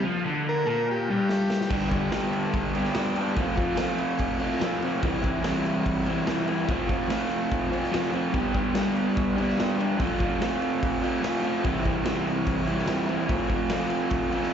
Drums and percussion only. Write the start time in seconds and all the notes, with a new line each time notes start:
1.29 snare
1.50 snare
1.61 snare
1.71 kick, crash
1.91 kick, crash
2.12 snare, crash
2.33 crash
2.54 kick, crash
2.75 crash
2.85 snare
2.94 snare, crash
3.16 crash
3.36 kick, crash
3.57 kick, crash
3.77 snare, crash
3.98 crash
4.19 kick, crash
4.39 crash
4.51 snare
4.61 snare, crash
4.82 crash
5.03 kick, crash
5.24 kick, crash
5.44 snare, crash
5.66 crash
5.86 kick, crash
6.06 crash
6.27 snare, crash
6.48 crash
6.69 kick, crash
6.89 kick, crash
7.10 snare, crash
7.31 crash
7.52 kick, crash
7.73 crash
7.84 snare
7.94 snare, crash
8.13 crash
8.34 kick, crash
8.54 kick, crash
8.75 snare, crash
8.96 crash
9.17 kick, crash
9.38 crash
9.49 snare
9.60 snare, crash
9.80 crash
10.00 kick, crash
10.20 kick, crash
10.42 snare, crash
10.62 crash
10.83 kick, crash
11.03 crash
11.24 snare, crash
11.44 crash
11.64 kick, crash
11.85 kick, crash
12.05 snare, crash
12.27 crash
12.47 kick, crash
12.68 crash
12.78 snare
12.87 snare, crash
13.09 crash
13.29 kick, crash
13.49 kick, crash
13.69 snare, crash
13.90 crash
14.10 kick, crash
14.32 crash
14.43 snare